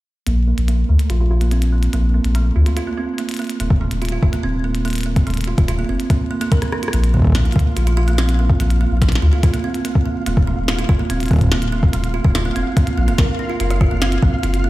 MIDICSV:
0, 0, Header, 1, 5, 480
1, 0, Start_track
1, 0, Tempo, 416667
1, 306, Time_signature, 4, 2, 24, 8
1, 16931, End_track
2, 0, Start_track
2, 0, Title_t, "Synth texture"
2, 0, Program_c, 0, 99
2, 7986, Note_on_c, 0, 77, 82
2, 7988, Note_on_c, 0, 65, 83
2, 16931, Note_off_c, 0, 65, 0
2, 16931, Note_off_c, 0, 77, 0
2, 16931, End_track
3, 0, Start_track
3, 0, Title_t, "Kalimba"
3, 0, Program_c, 1, 108
3, 306, Note_on_c, 1, 58, 82
3, 409, Note_off_c, 1, 58, 0
3, 548, Note_on_c, 1, 58, 72
3, 650, Note_off_c, 1, 58, 0
3, 786, Note_on_c, 1, 58, 78
3, 889, Note_off_c, 1, 58, 0
3, 1026, Note_on_c, 1, 57, 69
3, 1140, Note_off_c, 1, 57, 0
3, 1267, Note_on_c, 1, 65, 78
3, 1328, Note_off_c, 1, 65, 0
3, 1388, Note_on_c, 1, 65, 77
3, 1490, Note_off_c, 1, 65, 0
3, 1506, Note_on_c, 1, 65, 97
3, 1610, Note_off_c, 1, 65, 0
3, 1628, Note_on_c, 1, 58, 72
3, 1742, Note_off_c, 1, 58, 0
3, 1748, Note_on_c, 1, 60, 81
3, 1809, Note_off_c, 1, 60, 0
3, 1987, Note_on_c, 1, 58, 72
3, 2090, Note_off_c, 1, 58, 0
3, 2228, Note_on_c, 1, 58, 82
3, 2330, Note_off_c, 1, 58, 0
3, 2467, Note_on_c, 1, 58, 73
3, 2570, Note_off_c, 1, 58, 0
3, 2708, Note_on_c, 1, 57, 81
3, 2821, Note_off_c, 1, 57, 0
3, 2947, Note_on_c, 1, 65, 71
3, 3009, Note_off_c, 1, 65, 0
3, 3067, Note_on_c, 1, 65, 72
3, 3170, Note_off_c, 1, 65, 0
3, 3188, Note_on_c, 1, 65, 96
3, 3290, Note_off_c, 1, 65, 0
3, 3307, Note_on_c, 1, 58, 75
3, 3421, Note_off_c, 1, 58, 0
3, 3428, Note_on_c, 1, 60, 72
3, 3489, Note_off_c, 1, 60, 0
3, 3669, Note_on_c, 1, 58, 79
3, 3771, Note_off_c, 1, 58, 0
3, 3907, Note_on_c, 1, 58, 74
3, 4010, Note_off_c, 1, 58, 0
3, 4149, Note_on_c, 1, 58, 82
3, 4251, Note_off_c, 1, 58, 0
3, 4388, Note_on_c, 1, 57, 73
3, 4501, Note_off_c, 1, 57, 0
3, 4628, Note_on_c, 1, 65, 82
3, 4689, Note_off_c, 1, 65, 0
3, 4749, Note_on_c, 1, 65, 81
3, 4851, Note_off_c, 1, 65, 0
3, 4869, Note_on_c, 1, 65, 95
3, 4971, Note_off_c, 1, 65, 0
3, 4986, Note_on_c, 1, 58, 76
3, 5100, Note_off_c, 1, 58, 0
3, 5108, Note_on_c, 1, 60, 82
3, 5169, Note_off_c, 1, 60, 0
3, 5346, Note_on_c, 1, 58, 73
3, 5449, Note_off_c, 1, 58, 0
3, 5587, Note_on_c, 1, 58, 81
3, 5690, Note_off_c, 1, 58, 0
3, 5827, Note_on_c, 1, 58, 74
3, 5930, Note_off_c, 1, 58, 0
3, 6069, Note_on_c, 1, 57, 87
3, 6182, Note_off_c, 1, 57, 0
3, 6308, Note_on_c, 1, 65, 74
3, 6369, Note_off_c, 1, 65, 0
3, 6426, Note_on_c, 1, 65, 74
3, 6529, Note_off_c, 1, 65, 0
3, 6546, Note_on_c, 1, 65, 101
3, 6650, Note_off_c, 1, 65, 0
3, 6667, Note_on_c, 1, 58, 81
3, 6781, Note_off_c, 1, 58, 0
3, 6787, Note_on_c, 1, 60, 73
3, 6849, Note_off_c, 1, 60, 0
3, 7027, Note_on_c, 1, 58, 77
3, 7130, Note_off_c, 1, 58, 0
3, 7265, Note_on_c, 1, 58, 77
3, 7369, Note_off_c, 1, 58, 0
3, 7385, Note_on_c, 1, 58, 100
3, 7500, Note_off_c, 1, 58, 0
3, 7507, Note_on_c, 1, 70, 97
3, 7610, Note_off_c, 1, 70, 0
3, 7746, Note_on_c, 1, 62, 73
3, 7808, Note_off_c, 1, 62, 0
3, 7866, Note_on_c, 1, 65, 75
3, 7969, Note_off_c, 1, 65, 0
3, 7985, Note_on_c, 1, 58, 83
3, 8089, Note_off_c, 1, 58, 0
3, 8224, Note_on_c, 1, 58, 75
3, 8328, Note_off_c, 1, 58, 0
3, 8465, Note_on_c, 1, 58, 82
3, 8569, Note_off_c, 1, 58, 0
3, 8705, Note_on_c, 1, 57, 68
3, 8820, Note_off_c, 1, 57, 0
3, 8944, Note_on_c, 1, 65, 79
3, 9007, Note_off_c, 1, 65, 0
3, 9065, Note_on_c, 1, 65, 79
3, 9169, Note_off_c, 1, 65, 0
3, 9182, Note_on_c, 1, 65, 102
3, 9288, Note_off_c, 1, 65, 0
3, 9304, Note_on_c, 1, 58, 77
3, 9419, Note_off_c, 1, 58, 0
3, 9425, Note_on_c, 1, 60, 77
3, 9488, Note_off_c, 1, 60, 0
3, 9665, Note_on_c, 1, 58, 72
3, 9769, Note_off_c, 1, 58, 0
3, 9906, Note_on_c, 1, 58, 85
3, 10009, Note_off_c, 1, 58, 0
3, 10147, Note_on_c, 1, 58, 74
3, 10250, Note_off_c, 1, 58, 0
3, 10386, Note_on_c, 1, 57, 83
3, 10500, Note_off_c, 1, 57, 0
3, 10625, Note_on_c, 1, 65, 71
3, 10688, Note_off_c, 1, 65, 0
3, 10746, Note_on_c, 1, 65, 72
3, 10849, Note_off_c, 1, 65, 0
3, 10867, Note_on_c, 1, 65, 97
3, 10970, Note_off_c, 1, 65, 0
3, 10985, Note_on_c, 1, 58, 77
3, 11100, Note_off_c, 1, 58, 0
3, 11106, Note_on_c, 1, 60, 74
3, 11168, Note_off_c, 1, 60, 0
3, 11344, Note_on_c, 1, 58, 80
3, 11448, Note_off_c, 1, 58, 0
3, 11584, Note_on_c, 1, 58, 73
3, 11688, Note_off_c, 1, 58, 0
3, 11824, Note_on_c, 1, 58, 83
3, 11928, Note_off_c, 1, 58, 0
3, 12066, Note_on_c, 1, 57, 71
3, 12180, Note_off_c, 1, 57, 0
3, 12305, Note_on_c, 1, 65, 87
3, 12367, Note_off_c, 1, 65, 0
3, 12425, Note_on_c, 1, 65, 77
3, 12529, Note_off_c, 1, 65, 0
3, 12545, Note_on_c, 1, 65, 96
3, 12649, Note_off_c, 1, 65, 0
3, 12665, Note_on_c, 1, 58, 72
3, 12780, Note_off_c, 1, 58, 0
3, 12786, Note_on_c, 1, 60, 80
3, 12848, Note_off_c, 1, 60, 0
3, 13027, Note_on_c, 1, 58, 72
3, 13130, Note_off_c, 1, 58, 0
3, 13267, Note_on_c, 1, 58, 83
3, 13370, Note_off_c, 1, 58, 0
3, 13506, Note_on_c, 1, 58, 75
3, 13609, Note_off_c, 1, 58, 0
3, 13745, Note_on_c, 1, 57, 84
3, 13860, Note_off_c, 1, 57, 0
3, 13985, Note_on_c, 1, 65, 75
3, 14048, Note_off_c, 1, 65, 0
3, 14106, Note_on_c, 1, 65, 75
3, 14209, Note_off_c, 1, 65, 0
3, 14226, Note_on_c, 1, 65, 99
3, 14329, Note_off_c, 1, 65, 0
3, 14346, Note_on_c, 1, 58, 78
3, 14460, Note_off_c, 1, 58, 0
3, 14466, Note_on_c, 1, 60, 68
3, 14528, Note_off_c, 1, 60, 0
3, 14707, Note_on_c, 1, 58, 80
3, 14810, Note_off_c, 1, 58, 0
3, 14948, Note_on_c, 1, 58, 73
3, 15050, Note_off_c, 1, 58, 0
3, 15067, Note_on_c, 1, 58, 97
3, 15181, Note_off_c, 1, 58, 0
3, 15186, Note_on_c, 1, 70, 94
3, 15289, Note_off_c, 1, 70, 0
3, 15426, Note_on_c, 1, 62, 73
3, 15488, Note_off_c, 1, 62, 0
3, 15546, Note_on_c, 1, 65, 71
3, 15650, Note_off_c, 1, 65, 0
3, 15668, Note_on_c, 1, 65, 86
3, 15729, Note_off_c, 1, 65, 0
3, 15787, Note_on_c, 1, 65, 76
3, 15890, Note_off_c, 1, 65, 0
3, 15908, Note_on_c, 1, 65, 97
3, 16010, Note_off_c, 1, 65, 0
3, 16026, Note_on_c, 1, 58, 76
3, 16141, Note_off_c, 1, 58, 0
3, 16146, Note_on_c, 1, 60, 84
3, 16208, Note_off_c, 1, 60, 0
3, 16387, Note_on_c, 1, 58, 73
3, 16490, Note_off_c, 1, 58, 0
3, 16626, Note_on_c, 1, 65, 79
3, 16688, Note_off_c, 1, 65, 0
3, 16867, Note_on_c, 1, 58, 74
3, 16931, Note_off_c, 1, 58, 0
3, 16931, End_track
4, 0, Start_track
4, 0, Title_t, "Sub bass"
4, 0, Program_c, 2, 38
4, 308, Note_on_c, 2, 34, 100
4, 610, Note_off_c, 2, 34, 0
4, 666, Note_on_c, 2, 34, 79
4, 969, Note_off_c, 2, 34, 0
4, 1027, Note_on_c, 2, 38, 86
4, 1111, Note_off_c, 2, 38, 0
4, 1266, Note_on_c, 2, 34, 92
4, 2169, Note_off_c, 2, 34, 0
4, 2227, Note_on_c, 2, 34, 98
4, 2529, Note_off_c, 2, 34, 0
4, 2586, Note_on_c, 2, 34, 77
4, 2889, Note_off_c, 2, 34, 0
4, 2947, Note_on_c, 2, 38, 82
4, 3031, Note_off_c, 2, 38, 0
4, 4147, Note_on_c, 2, 27, 101
4, 4450, Note_off_c, 2, 27, 0
4, 4506, Note_on_c, 2, 27, 82
4, 4809, Note_off_c, 2, 27, 0
4, 4868, Note_on_c, 2, 29, 82
4, 4952, Note_off_c, 2, 29, 0
4, 5107, Note_on_c, 2, 27, 86
4, 6010, Note_off_c, 2, 27, 0
4, 6067, Note_on_c, 2, 27, 96
4, 6370, Note_off_c, 2, 27, 0
4, 6427, Note_on_c, 2, 27, 81
4, 6730, Note_off_c, 2, 27, 0
4, 6786, Note_on_c, 2, 29, 86
4, 6871, Note_off_c, 2, 29, 0
4, 7988, Note_on_c, 2, 34, 101
4, 8290, Note_off_c, 2, 34, 0
4, 8347, Note_on_c, 2, 34, 79
4, 8649, Note_off_c, 2, 34, 0
4, 8706, Note_on_c, 2, 38, 84
4, 8791, Note_off_c, 2, 38, 0
4, 8946, Note_on_c, 2, 34, 92
4, 9849, Note_off_c, 2, 34, 0
4, 9907, Note_on_c, 2, 34, 96
4, 10210, Note_off_c, 2, 34, 0
4, 10267, Note_on_c, 2, 34, 82
4, 10570, Note_off_c, 2, 34, 0
4, 10626, Note_on_c, 2, 38, 86
4, 10711, Note_off_c, 2, 38, 0
4, 11826, Note_on_c, 2, 27, 103
4, 12129, Note_off_c, 2, 27, 0
4, 12186, Note_on_c, 2, 27, 78
4, 12489, Note_off_c, 2, 27, 0
4, 12547, Note_on_c, 2, 29, 85
4, 12631, Note_off_c, 2, 29, 0
4, 12787, Note_on_c, 2, 27, 94
4, 13690, Note_off_c, 2, 27, 0
4, 13748, Note_on_c, 2, 27, 102
4, 14050, Note_off_c, 2, 27, 0
4, 14108, Note_on_c, 2, 27, 80
4, 14410, Note_off_c, 2, 27, 0
4, 14468, Note_on_c, 2, 29, 85
4, 14551, Note_off_c, 2, 29, 0
4, 14946, Note_on_c, 2, 34, 101
4, 15069, Note_on_c, 2, 29, 80
4, 15086, Note_off_c, 2, 34, 0
4, 15152, Note_off_c, 2, 29, 0
4, 15188, Note_on_c, 2, 34, 104
4, 15272, Note_off_c, 2, 34, 0
4, 15668, Note_on_c, 2, 30, 105
4, 15970, Note_off_c, 2, 30, 0
4, 16027, Note_on_c, 2, 30, 79
4, 16329, Note_off_c, 2, 30, 0
4, 16388, Note_on_c, 2, 34, 87
4, 16471, Note_off_c, 2, 34, 0
4, 16628, Note_on_c, 2, 30, 92
4, 16931, Note_off_c, 2, 30, 0
4, 16931, End_track
5, 0, Start_track
5, 0, Title_t, "Drums"
5, 306, Note_on_c, 9, 42, 64
5, 421, Note_off_c, 9, 42, 0
5, 666, Note_on_c, 9, 42, 51
5, 781, Note_off_c, 9, 42, 0
5, 786, Note_on_c, 9, 42, 65
5, 901, Note_off_c, 9, 42, 0
5, 1145, Note_on_c, 9, 42, 51
5, 1260, Note_off_c, 9, 42, 0
5, 1265, Note_on_c, 9, 42, 64
5, 1380, Note_off_c, 9, 42, 0
5, 1625, Note_on_c, 9, 42, 49
5, 1740, Note_off_c, 9, 42, 0
5, 1744, Note_on_c, 9, 42, 65
5, 1859, Note_off_c, 9, 42, 0
5, 1866, Note_on_c, 9, 42, 64
5, 1981, Note_off_c, 9, 42, 0
5, 2104, Note_on_c, 9, 42, 51
5, 2219, Note_off_c, 9, 42, 0
5, 2225, Note_on_c, 9, 42, 65
5, 2340, Note_off_c, 9, 42, 0
5, 2586, Note_on_c, 9, 42, 51
5, 2701, Note_off_c, 9, 42, 0
5, 2706, Note_on_c, 9, 42, 70
5, 2821, Note_off_c, 9, 42, 0
5, 3067, Note_on_c, 9, 42, 54
5, 3182, Note_off_c, 9, 42, 0
5, 3187, Note_on_c, 9, 42, 64
5, 3302, Note_off_c, 9, 42, 0
5, 3666, Note_on_c, 9, 42, 65
5, 3782, Note_off_c, 9, 42, 0
5, 3787, Note_on_c, 9, 42, 61
5, 3816, Note_off_c, 9, 42, 0
5, 3816, Note_on_c, 9, 42, 50
5, 3847, Note_off_c, 9, 42, 0
5, 3847, Note_on_c, 9, 42, 42
5, 3877, Note_off_c, 9, 42, 0
5, 3877, Note_on_c, 9, 42, 34
5, 3906, Note_off_c, 9, 42, 0
5, 3906, Note_on_c, 9, 42, 26
5, 3937, Note_off_c, 9, 42, 0
5, 3937, Note_on_c, 9, 42, 22
5, 3967, Note_off_c, 9, 42, 0
5, 3967, Note_on_c, 9, 42, 18
5, 3996, Note_off_c, 9, 42, 0
5, 3996, Note_on_c, 9, 42, 14
5, 4026, Note_off_c, 9, 42, 0
5, 4026, Note_on_c, 9, 42, 54
5, 4142, Note_off_c, 9, 42, 0
5, 4147, Note_on_c, 9, 42, 65
5, 4262, Note_off_c, 9, 42, 0
5, 4267, Note_on_c, 9, 36, 127
5, 4382, Note_off_c, 9, 36, 0
5, 4506, Note_on_c, 9, 42, 54
5, 4622, Note_off_c, 9, 42, 0
5, 4627, Note_on_c, 9, 42, 31
5, 4666, Note_off_c, 9, 42, 0
5, 4666, Note_on_c, 9, 42, 43
5, 4707, Note_off_c, 9, 42, 0
5, 4707, Note_on_c, 9, 42, 51
5, 4822, Note_off_c, 9, 42, 0
5, 4868, Note_on_c, 9, 36, 107
5, 4983, Note_off_c, 9, 36, 0
5, 4988, Note_on_c, 9, 42, 55
5, 5103, Note_off_c, 9, 42, 0
5, 5468, Note_on_c, 9, 42, 50
5, 5583, Note_off_c, 9, 42, 0
5, 5587, Note_on_c, 9, 42, 31
5, 5619, Note_off_c, 9, 42, 0
5, 5619, Note_on_c, 9, 42, 32
5, 5648, Note_off_c, 9, 42, 0
5, 5648, Note_on_c, 9, 42, 38
5, 5679, Note_off_c, 9, 42, 0
5, 5679, Note_on_c, 9, 42, 40
5, 5708, Note_off_c, 9, 42, 0
5, 5708, Note_on_c, 9, 42, 62
5, 5737, Note_off_c, 9, 42, 0
5, 5737, Note_on_c, 9, 42, 51
5, 5767, Note_off_c, 9, 42, 0
5, 5767, Note_on_c, 9, 42, 54
5, 5798, Note_off_c, 9, 42, 0
5, 5798, Note_on_c, 9, 42, 58
5, 5913, Note_off_c, 9, 42, 0
5, 5948, Note_on_c, 9, 36, 111
5, 5948, Note_on_c, 9, 42, 52
5, 6063, Note_off_c, 9, 36, 0
5, 6063, Note_off_c, 9, 42, 0
5, 6069, Note_on_c, 9, 42, 28
5, 6108, Note_off_c, 9, 42, 0
5, 6108, Note_on_c, 9, 42, 33
5, 6148, Note_off_c, 9, 42, 0
5, 6148, Note_on_c, 9, 42, 41
5, 6190, Note_off_c, 9, 42, 0
5, 6190, Note_on_c, 9, 42, 43
5, 6229, Note_off_c, 9, 42, 0
5, 6229, Note_on_c, 9, 42, 49
5, 6269, Note_off_c, 9, 42, 0
5, 6269, Note_on_c, 9, 42, 56
5, 6384, Note_off_c, 9, 42, 0
5, 6427, Note_on_c, 9, 36, 121
5, 6429, Note_on_c, 9, 42, 51
5, 6542, Note_off_c, 9, 36, 0
5, 6544, Note_off_c, 9, 42, 0
5, 6548, Note_on_c, 9, 42, 67
5, 6663, Note_off_c, 9, 42, 0
5, 6908, Note_on_c, 9, 42, 52
5, 7024, Note_off_c, 9, 42, 0
5, 7027, Note_on_c, 9, 36, 105
5, 7028, Note_on_c, 9, 42, 65
5, 7143, Note_off_c, 9, 36, 0
5, 7143, Note_off_c, 9, 42, 0
5, 7387, Note_on_c, 9, 42, 47
5, 7503, Note_off_c, 9, 42, 0
5, 7507, Note_on_c, 9, 36, 121
5, 7507, Note_on_c, 9, 42, 64
5, 7622, Note_off_c, 9, 36, 0
5, 7623, Note_off_c, 9, 42, 0
5, 7626, Note_on_c, 9, 37, 55
5, 7626, Note_on_c, 9, 42, 60
5, 7742, Note_off_c, 9, 37, 0
5, 7742, Note_off_c, 9, 42, 0
5, 7747, Note_on_c, 9, 37, 78
5, 7862, Note_off_c, 9, 37, 0
5, 7867, Note_on_c, 9, 42, 51
5, 7926, Note_on_c, 9, 37, 80
5, 7982, Note_off_c, 9, 42, 0
5, 7985, Note_on_c, 9, 42, 81
5, 8041, Note_off_c, 9, 37, 0
5, 8100, Note_off_c, 9, 42, 0
5, 8105, Note_on_c, 9, 42, 53
5, 8221, Note_off_c, 9, 42, 0
5, 8227, Note_on_c, 9, 36, 46
5, 8257, Note_off_c, 9, 36, 0
5, 8257, Note_on_c, 9, 36, 53
5, 8287, Note_off_c, 9, 36, 0
5, 8287, Note_on_c, 9, 36, 59
5, 8317, Note_off_c, 9, 36, 0
5, 8317, Note_on_c, 9, 36, 66
5, 8347, Note_off_c, 9, 36, 0
5, 8347, Note_on_c, 9, 36, 72
5, 8377, Note_off_c, 9, 36, 0
5, 8377, Note_on_c, 9, 36, 77
5, 8407, Note_off_c, 9, 36, 0
5, 8407, Note_on_c, 9, 36, 83
5, 8436, Note_off_c, 9, 36, 0
5, 8436, Note_on_c, 9, 36, 91
5, 8466, Note_on_c, 9, 38, 122
5, 8466, Note_on_c, 9, 42, 85
5, 8552, Note_off_c, 9, 36, 0
5, 8581, Note_off_c, 9, 38, 0
5, 8581, Note_off_c, 9, 42, 0
5, 8586, Note_on_c, 9, 42, 23
5, 8667, Note_off_c, 9, 42, 0
5, 8667, Note_on_c, 9, 42, 34
5, 8706, Note_on_c, 9, 36, 120
5, 8747, Note_off_c, 9, 42, 0
5, 8747, Note_on_c, 9, 42, 41
5, 8822, Note_off_c, 9, 36, 0
5, 8862, Note_off_c, 9, 42, 0
5, 8947, Note_on_c, 9, 42, 78
5, 9062, Note_off_c, 9, 42, 0
5, 9067, Note_on_c, 9, 42, 54
5, 9182, Note_off_c, 9, 42, 0
5, 9306, Note_on_c, 9, 42, 36
5, 9422, Note_off_c, 9, 42, 0
5, 9427, Note_on_c, 9, 38, 115
5, 9427, Note_on_c, 9, 42, 80
5, 9542, Note_off_c, 9, 38, 0
5, 9542, Note_off_c, 9, 42, 0
5, 9548, Note_on_c, 9, 42, 56
5, 9663, Note_off_c, 9, 42, 0
5, 9787, Note_on_c, 9, 36, 114
5, 9902, Note_off_c, 9, 36, 0
5, 9907, Note_on_c, 9, 42, 84
5, 10023, Note_off_c, 9, 42, 0
5, 10027, Note_on_c, 9, 42, 54
5, 10142, Note_off_c, 9, 42, 0
5, 10387, Note_on_c, 9, 36, 110
5, 10387, Note_on_c, 9, 38, 56
5, 10387, Note_on_c, 9, 42, 85
5, 10467, Note_off_c, 9, 38, 0
5, 10467, Note_on_c, 9, 38, 79
5, 10502, Note_off_c, 9, 36, 0
5, 10502, Note_off_c, 9, 42, 0
5, 10506, Note_on_c, 9, 42, 53
5, 10546, Note_off_c, 9, 38, 0
5, 10546, Note_on_c, 9, 38, 96
5, 10621, Note_off_c, 9, 42, 0
5, 10661, Note_off_c, 9, 38, 0
5, 10866, Note_on_c, 9, 42, 82
5, 10867, Note_on_c, 9, 36, 124
5, 10981, Note_off_c, 9, 42, 0
5, 10982, Note_off_c, 9, 36, 0
5, 10986, Note_on_c, 9, 42, 52
5, 11101, Note_off_c, 9, 42, 0
5, 11226, Note_on_c, 9, 42, 35
5, 11341, Note_off_c, 9, 42, 0
5, 11346, Note_on_c, 9, 42, 79
5, 11461, Note_off_c, 9, 42, 0
5, 11466, Note_on_c, 9, 36, 106
5, 11582, Note_off_c, 9, 36, 0
5, 11824, Note_on_c, 9, 42, 79
5, 11940, Note_off_c, 9, 42, 0
5, 11946, Note_on_c, 9, 36, 122
5, 12062, Note_off_c, 9, 36, 0
5, 12305, Note_on_c, 9, 38, 127
5, 12305, Note_on_c, 9, 42, 85
5, 12420, Note_off_c, 9, 38, 0
5, 12420, Note_off_c, 9, 42, 0
5, 12425, Note_on_c, 9, 42, 54
5, 12541, Note_off_c, 9, 42, 0
5, 12546, Note_on_c, 9, 36, 116
5, 12662, Note_off_c, 9, 36, 0
5, 12786, Note_on_c, 9, 42, 79
5, 12901, Note_off_c, 9, 42, 0
5, 12907, Note_on_c, 9, 42, 49
5, 12936, Note_off_c, 9, 42, 0
5, 12936, Note_on_c, 9, 42, 44
5, 12967, Note_off_c, 9, 42, 0
5, 12967, Note_on_c, 9, 42, 33
5, 12997, Note_off_c, 9, 42, 0
5, 12997, Note_on_c, 9, 42, 27
5, 13027, Note_on_c, 9, 36, 117
5, 13057, Note_off_c, 9, 36, 0
5, 13057, Note_off_c, 9, 42, 0
5, 13057, Note_on_c, 9, 36, 93
5, 13057, Note_on_c, 9, 42, 19
5, 13087, Note_off_c, 9, 36, 0
5, 13087, Note_off_c, 9, 42, 0
5, 13087, Note_on_c, 9, 36, 74
5, 13087, Note_on_c, 9, 42, 16
5, 13116, Note_off_c, 9, 36, 0
5, 13116, Note_on_c, 9, 36, 67
5, 13117, Note_off_c, 9, 42, 0
5, 13117, Note_on_c, 9, 42, 13
5, 13147, Note_off_c, 9, 36, 0
5, 13147, Note_off_c, 9, 42, 0
5, 13147, Note_on_c, 9, 36, 57
5, 13147, Note_on_c, 9, 42, 37
5, 13176, Note_off_c, 9, 36, 0
5, 13176, Note_on_c, 9, 36, 45
5, 13207, Note_off_c, 9, 36, 0
5, 13207, Note_on_c, 9, 36, 38
5, 13237, Note_off_c, 9, 36, 0
5, 13237, Note_on_c, 9, 36, 30
5, 13262, Note_off_c, 9, 42, 0
5, 13266, Note_on_c, 9, 38, 123
5, 13266, Note_on_c, 9, 42, 76
5, 13352, Note_off_c, 9, 36, 0
5, 13382, Note_off_c, 9, 38, 0
5, 13382, Note_off_c, 9, 42, 0
5, 13386, Note_on_c, 9, 42, 54
5, 13502, Note_off_c, 9, 42, 0
5, 13627, Note_on_c, 9, 36, 114
5, 13742, Note_off_c, 9, 36, 0
5, 13747, Note_on_c, 9, 42, 77
5, 13862, Note_off_c, 9, 42, 0
5, 13867, Note_on_c, 9, 42, 52
5, 13982, Note_off_c, 9, 42, 0
5, 14107, Note_on_c, 9, 36, 119
5, 14223, Note_off_c, 9, 36, 0
5, 14227, Note_on_c, 9, 38, 127
5, 14227, Note_on_c, 9, 42, 80
5, 14342, Note_off_c, 9, 38, 0
5, 14342, Note_off_c, 9, 42, 0
5, 14468, Note_on_c, 9, 42, 49
5, 14583, Note_off_c, 9, 42, 0
5, 14708, Note_on_c, 9, 36, 110
5, 14708, Note_on_c, 9, 42, 79
5, 14823, Note_off_c, 9, 36, 0
5, 14823, Note_off_c, 9, 42, 0
5, 14827, Note_on_c, 9, 42, 49
5, 14943, Note_off_c, 9, 42, 0
5, 15068, Note_on_c, 9, 42, 34
5, 15184, Note_off_c, 9, 42, 0
5, 15188, Note_on_c, 9, 36, 122
5, 15189, Note_on_c, 9, 38, 118
5, 15189, Note_on_c, 9, 42, 74
5, 15303, Note_off_c, 9, 36, 0
5, 15304, Note_off_c, 9, 38, 0
5, 15304, Note_off_c, 9, 42, 0
5, 15668, Note_on_c, 9, 42, 76
5, 15783, Note_off_c, 9, 42, 0
5, 15789, Note_on_c, 9, 37, 49
5, 15789, Note_on_c, 9, 42, 49
5, 15904, Note_off_c, 9, 37, 0
5, 15904, Note_off_c, 9, 42, 0
5, 15908, Note_on_c, 9, 36, 105
5, 15908, Note_on_c, 9, 37, 52
5, 16023, Note_off_c, 9, 36, 0
5, 16023, Note_off_c, 9, 37, 0
5, 16148, Note_on_c, 9, 38, 121
5, 16148, Note_on_c, 9, 42, 81
5, 16263, Note_off_c, 9, 38, 0
5, 16263, Note_off_c, 9, 42, 0
5, 16268, Note_on_c, 9, 42, 48
5, 16383, Note_off_c, 9, 42, 0
5, 16388, Note_on_c, 9, 36, 117
5, 16503, Note_off_c, 9, 36, 0
5, 16629, Note_on_c, 9, 42, 74
5, 16744, Note_off_c, 9, 42, 0
5, 16747, Note_on_c, 9, 42, 50
5, 16863, Note_off_c, 9, 42, 0
5, 16931, End_track
0, 0, End_of_file